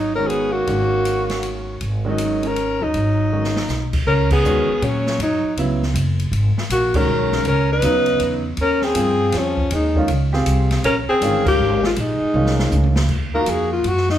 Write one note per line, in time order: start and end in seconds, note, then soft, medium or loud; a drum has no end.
0.00 0.64 G#1 medium
0.00 0.14 F#3 medium
0.00 0.15 D#4 medium
0.15 0.65 D#3 medium
0.15 0.66 G#3 medium
0.15 0.30 C#4 medium
0.15 0.66 C#4 soft
0.15 0.67 F#4 medium
0.15 0.29 A#4 medium
0.27 0.53 B3 medium
0.27 0.54 G#4 medium
0.27 ride soft
0.51 1.66 A#3 medium
0.51 1.67 F#4 medium
0.67 1.77 G#1 medium
0.67 1.73 D#3 medium
0.67 1.73 G#3 soft
0.67 1.73 C#4 medium
0.67 1.73 F#4 medium
0.67 ride soft
1.05 hi-hat pedal soft
1.05 ride medium
1.29 snare soft
1.29 ride soft
1.43 ride medium
1.81 2.77 G#1 medium
1.81 ride soft
2.05 2.53 D#3 medium
2.05 2.45 F#3 medium
2.05 2.53 G#3 medium
2.05 2.54 C#4 medium
2.05 2.54 F#4 medium
2.09 2.49 D#4 medium
2.18 hi-hat pedal medium
2.18 ride medium
2.43 2.82 C#4 medium
2.43 ride soft
2.47 2.85 A#4 medium
2.56 ride soft
2.80 2.93 D#2 medium
2.80 3.93 F#3 medium
2.80 3.95 D#4 medium
2.94 3.65 G#1 medium
2.94 ride soft
3.32 3.54 D#3 soft
3.32 3.54 G#3 soft
3.32 3.54 C#4 soft
3.32 3.54 F#4 soft
3.44 snare soft
3.56 snare medium
3.68 4.04 B1 medium
3.68 snare soft
3.68 hi-hat pedal soft
3.93 kick medium
3.93 crash medium
4.07 4.43 C#2 medium
4.07 4.30 C#4 medium
4.07 4.29 A#4 medium
4.30 4.86 B3 medium
4.30 4.85 G#4 loud
4.30 kick medium
4.30 crash medium
4.44 4.67 D#2 medium
4.44 4.66 D#3 medium
4.44 4.67 G#3 medium
4.44 4.67 C#4 medium
4.44 4.67 F#4 medium
4.44 hi-hat pedal medium
4.69 muted upright bass stroke soft
4.82 5.18 A#2 medium
4.82 5.21 F#3 medium
4.82 5.20 C#4 medium
4.82 ride medium
5.07 snare medium
5.18 5.42 F#2 medium
5.18 ride medium
5.23 5.57 F#3 medium
5.23 5.56 D#4 medium
5.44 muted upright bass stroke soft
5.57 5.93 C#2 medium
5.57 5.80 C#3 medium
5.57 5.80 F#3 medium
5.57 5.80 B3 medium
5.57 5.80 E4 medium
5.57 ride medium
5.83 snare soft
5.94 6.31 F#1 medium
5.94 hi-hat pedal medium
5.94 ride medium
6.19 ride soft
6.31 6.55 G#1 medium
6.31 ride medium
6.57 muted upright bass stroke soft
6.57 snare medium
6.70 7.06 A#1 medium
6.70 6.97 A#3 medium
6.70 6.98 F#4 medium
6.70 hi-hat pedal medium
6.70 ride medium
6.94 7.43 D#3 medium
6.94 7.43 G#3 medium
6.94 7.43 C#4 medium
6.94 7.46 C#4 medium
6.94 7.43 F#4 medium
6.94 7.46 A#4 loud
6.94 kick medium
6.94 crash medium
7.08 7.44 B1 medium
7.32 snare soft
7.45 7.81 C#2 medium
7.45 7.69 C#4 medium
7.45 7.69 A#4 loud
7.45 ride medium
7.72 8.42 D#4 medium
7.72 8.43 B4 loud
7.82 8.19 D#2 medium
7.82 8.40 C#3 medium
7.82 8.40 F#3 medium
7.82 8.40 B3 medium
7.82 8.41 D#4 medium
7.82 hi-hat pedal medium
7.82 ride medium
8.06 ride soft
8.20 8.57 E2 medium
8.20 ride medium
8.57 8.94 D#2 medium
8.57 ride medium
8.61 8.85 C#4 medium
8.61 8.85 A#4 medium
8.82 9.36 C4 medium
8.82 9.40 G#4 loud
8.82 snare soft
8.94 9.32 G2 medium
8.94 9.52 F3 medium
8.94 9.52 C4 medium
8.94 9.52 F4 medium
8.94 9.53 G#4 medium
8.94 hi-hat pedal medium
8.94 ride medium
9.32 9.70 F2 medium
9.32 9.72 F3 medium
9.32 snare soft
9.32 ride medium
9.38 9.73 C#4 medium
9.57 kick medium
9.70 10.08 D#2 medium
9.70 10.07 G#3 medium
9.70 ride medium
9.75 10.08 D#4 medium
9.95 10.08 D#3 medium
9.95 10.08 G#3 medium
9.95 10.08 C#4 medium
9.95 10.08 F4 medium
9.95 kick soft
10.08 10.45 C#2 medium
10.08 ride medium
10.33 10.82 C4 medium
10.33 10.82 F4 medium
10.33 10.81 G4 medium
10.33 10.82 G#4 medium
10.33 snare soft
10.46 10.83 C2 medium
10.46 hi-hat pedal medium
10.46 ride medium
10.71 snare medium
10.71 ride soft
10.83 11.06 A#1 medium
10.83 10.96 C#4 medium
10.83 10.96 A#4 loud
10.83 ride medium
11.08 11.44 C4 medium
11.08 11.44 G#4 loud
11.08 muted upright bass stroke soft
11.21 11.58 G1 medium
11.21 11.79 D#3 medium
11.21 11.79 G#3 medium
11.21 11.79 C#4 medium
11.21 11.80 F4 medium
11.21 hi-hat pedal medium
11.21 ride medium
11.45 11.80 A#3 medium
11.45 11.82 G4 loud
11.45 kick medium
11.45 crash medium
11.59 11.96 G#1 medium
11.83 11.89 G#3 medium
11.83 11.91 F4 medium
11.83 snare medium
11.96 12.19 A#1 medium
11.96 12.93 G#3 medium
11.96 ride medium
12.00 12.94 D#4 medium
12.20 muted upright bass stroke soft
12.34 12.71 C2 medium
12.34 12.91 D#3 medium
12.34 12.91 G#3 soft
12.34 12.92 C#4 soft
12.34 12.92 F4 medium
12.46 snare medium
12.59 snare medium
12.71 13.08 C#2 medium
12.71 hi-hat pedal medium
12.71 high tom medium
12.84 high tom medium
12.96 snare medium
13.09 13.46 D#2 medium
13.09 kick medium
13.09 crash medium
13.34 13.83 A#3 medium
13.34 13.83 D#4 medium
13.34 13.82 F4 medium
13.34 13.83 F#4 medium
13.34 13.52 A#4 medium
13.46 13.83 F2 medium
13.46 hi-hat pedal medium
13.46 ride medium
13.50 13.72 G#4 medium
13.73 13.90 F4 medium
13.84 14.19 F#2 medium
13.84 ride soft
13.88 14.10 F#4 medium
13.97 snare soft
14.09 14.19 D#4 medium
14.09 snare soft